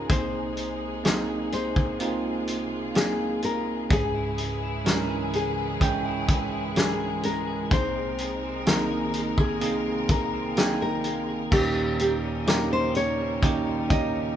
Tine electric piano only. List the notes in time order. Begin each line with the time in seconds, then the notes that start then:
Already playing: C#4 D#4 F4 G#4 A#4
0.10 C2 C3 A#3 C4 D#4 G#4
1.04 A#3 C4 D#4 G#4
2.00 A#3 C4 D#4 F4
2.94 A#3 C4 D#4 G#4
3.89 C#2 G#2 G#3 C#4 E4 G#4
4.85 G#3 C#4 E4 A#4
5.80 G#3 C#4 E4 G5
6.76 G#3 C#4 E4 A#4
7.70 C2 C3 A#3 C4 D#4 G#4
8.66 A#3 C4 D#4 G#4
9.60 A#3 C4 D#4 G#4
10.56 A#3 C4 D#4 G5
11.51 D#2 A#2 A#3 C#4 D#4 G4
12.46 A#3 C#4 D#4 G4
13.42 A#3 C#4 D#4 G4
13.89 A#3 C#4 D#4 G4